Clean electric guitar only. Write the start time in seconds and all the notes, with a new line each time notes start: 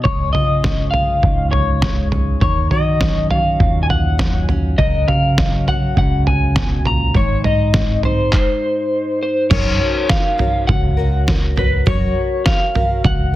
0.04 C#5
0.33 D#5
0.91 F5
1.51 C#5
2.42 C#5
2.71 D#5
3.31 F5
3.83 G#5
3.90 F#5
4.78 D#5
5.08 F5
5.68 F#5
5.98 F#5
6.27 G#5
6.87 A#5
7.16 C#5
7.45 D#5
8.05 C5
8.36 C5
9.23 C5
9.50 C#5
10.10 F5
10.67 F#5
11.59 B4
11.88 C#5
12.46 F5
13.05 F#5